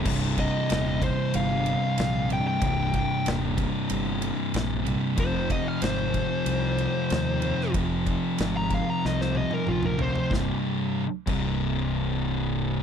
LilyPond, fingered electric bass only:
\new Staff \with { instrumentName = "Fingered electric bass" } { \clef bass \time 4/4 \key c \minor \tempo 4 = 94 c,,4 ees,,4 g,,4 bes,,4 | c,,4 ees,,4 g,,4 bes,,4 | f,,4 aes,,4 c,4 ees,4 | f,,4 aes,,4 c,4 bes,,4 |
c,,8 r4 c,,2~ c,,8 | }